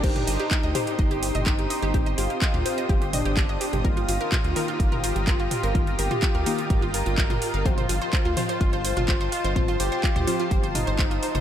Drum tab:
CC |x---------------|----------------|----------------|----------------|
HH |xxoxxxoxxxoxxxox|xxoxxxoxxxoxxxox|xxoxxxoxxxoxxxox|xxoxxxoxxxoxxxox|
CP |----x-------x---|----x-------x---|----x-------x---|----x-------x---|
T2 |-o----o----o----|o----o----o----o|----o----o----o-|---o----o----o--|
BD |o---o---o---o---|o---o---o---o---|o---o---o---o---|o---o---o---o---|

CC |----------------|----------------|
HH |xxoxxxoxxxoxxxox|xxoxxxoxxxoxxxox|
CP |----x-------x---|----x-------x---|
T2 |-o----o----o----|o----o----o----o|
BD |o---o---o---o---|o---o---o---o---|